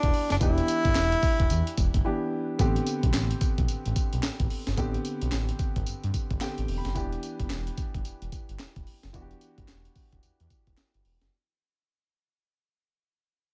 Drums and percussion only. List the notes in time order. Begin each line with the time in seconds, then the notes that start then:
0.03 kick, closed hi-hat
0.14 open hi-hat
0.30 snare, closed hi-hat
0.41 kick, closed hi-hat, tambourine
0.58 closed hi-hat
0.68 closed hi-hat, tambourine
0.85 kick, closed hi-hat
0.95 snare, clap, closed hi-hat, tambourine
1.12 closed hi-hat
1.22 kick, open hi-hat, tambourine
1.40 kick, closed hi-hat
1.50 closed hi-hat, tambourine
1.67 closed hi-hat
1.77 kick, closed hi-hat, tambourine
1.94 kick, closed hi-hat
2.59 kick, closed hi-hat, tambourine
2.76 closed hi-hat
2.86 closed hi-hat, tambourine
3.03 kick, closed hi-hat
3.14 snare, clap, closed hi-hat, tambourine
3.31 closed hi-hat
3.41 kick, closed hi-hat, tambourine
3.58 kick, closed hi-hat
3.68 closed hi-hat, tambourine
3.86 closed hi-hat
3.96 kick, closed hi-hat, tambourine
4.13 closed hi-hat
4.23 snare, clap, closed hi-hat, tambourine
4.40 kick, closed hi-hat
4.50 open hi-hat
4.67 snare, closed hi-hat
4.77 kick, closed hi-hat, tambourine
4.94 closed hi-hat
5.05 closed hi-hat, tambourine
5.21 closed hi-hat
5.32 snare, clap, closed hi-hat, tambourine
5.49 closed hi-hat
5.59 kick, closed hi-hat, tambourine
5.76 kick, closed hi-hat
5.86 closed hi-hat, tambourine
6.04 closed hi-hat
6.14 kick, closed hi-hat, tambourine
6.31 kick, closed hi-hat
6.41 snare, clap, closed hi-hat, tambourine
6.58 closed hi-hat
6.68 open hi-hat
6.85 snare, closed hi-hat
6.95 kick, closed hi-hat, tambourine
7.12 closed hi-hat
7.23 closed hi-hat, tambourine
7.40 kick, closed hi-hat
7.50 snare, clap, closed hi-hat, tambourine
7.67 closed hi-hat
7.77 kick, closed hi-hat, tambourine
7.94 kick, closed hi-hat
8.05 closed hi-hat, tambourine
8.22 closed hi-hat
8.32 kick, closed hi-hat, tambourine
8.49 closed hi-hat
8.59 snare, clap, closed hi-hat, tambourine
8.76 kick, closed hi-hat
8.87 open hi-hat
9.03 snare, closed hi-hat
9.14 kick, closed hi-hat, tambourine
9.31 closed hi-hat
9.41 closed hi-hat, tambourine
9.58 kick, closed hi-hat
9.68 snare, clap, closed hi-hat, tambourine
9.85 closed hi-hat
9.95 kick, open hi-hat, tambourine
10.12 kick, closed hi-hat
10.23 closed hi-hat, tambourine
10.40 closed hi-hat
10.50 kick, closed hi-hat, tambourine
10.67 kick, closed hi-hat
10.77 snare, clap, closed hi-hat, tambourine
10.94 closed hi-hat
11.05 open hi-hat
11.21 snare, closed hi-hat